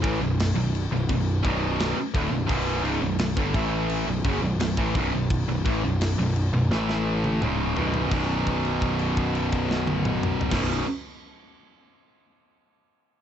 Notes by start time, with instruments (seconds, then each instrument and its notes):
0.02 picked electric bass A1, distorted electric guitar A2 E3, kick, crash
0.20 picked electric bass B0, distorted electric guitar B1 F#2
0.40 snare, crash
0.55 picked electric bass B0, distorted electric guitar B1 F#2
0.75 crash
0.89 picked electric bass B0, distorted electric guitar B1 F#2
1.09 picked electric bass B0, distorted electric guitar B1 F#2, kick, crash
1.43 picked electric bass B0, distorted electric guitar B1 F#2 B2, kick, crash
1.80 snare, crash
1.95 muted picked electric bass stroke, muted distorted electric guitar stroke
2.14 picked electric bass D1, distorted electric guitar D2 A2, kick, crash
2.30 picked electric bass B0, distorted electric guitar B1 F#2
2.46 picked electric bass B0, distorted electric guitar B1 F#2 B2, kick, crash
2.83 picked electric bass C#1, distorted electric guitar C#2 G#2, crash
3.01 picked electric bass B0, distorted electric guitar B1 F#2
3.19 picked electric bass B0, distorted electric guitar B1 F#2, snare, crash
3.36 picked electric bass G1, distorted electric guitar G2 D3, kick
3.54 picked electric bass A1, distorted electric guitar A2 E3 A3, kick, crash
3.89 crash
4.07 picked electric bass B0, distorted electric guitar B1 F#2
4.24 picked electric bass F#1, distorted electric guitar F#2 C#3, kick, crash
4.41 picked electric bass B0, distorted electric guitar B1 F#2
4.59 picked electric bass B0, distorted electric guitar B1 F#2, snare, crash
4.77 picked electric bass A1, distorted electric guitar A2 E3, kick
4.95 picked electric bass B0, distorted electric guitar B1 F#2, kick, crash
5.13 picked electric bass B0, distorted electric guitar B1 F#2
5.30 kick, crash
5.47 picked electric bass B0, distorted electric guitar B1 F#2
5.65 picked electric bass A1, distorted electric guitar A2 E3, kick, crash
5.82 picked electric bass B0, distorted electric guitar B1 F#2
6.01 snare, crash
6.19 picked electric bass B0, distorted electric guitar B1 F#2
6.36 crash
6.53 picked electric bass B0, distorted electric guitar B1 F#2
6.70 picked electric bass A1, distorted electric guitar A2 E3 A3, snare
6.89 snare
7.24 high tom
7.41 picked electric bass C#1, distorted electric guitar C#2 G#2 C#3, mid tom
7.77 picked electric bass B0, distorted electric guitar B1 F#2 B2, floor tom
7.94 floor tom
8.11 picked electric bass B0, distorted electric guitar B1 F#2, kick, crash
8.15 distorted electric guitar B2
8.46 kick, crash
8.65 crash
8.82 kick, crash
8.99 crash
9.17 kick, crash
9.35 crash
9.52 kick, crash
9.71 snare
9.87 high tom
10.05 mid tom
10.23 mid tom
10.41 floor tom
10.50 picked electric bass B0, distorted electric guitar B1 F#2 B2, kick, snare, crash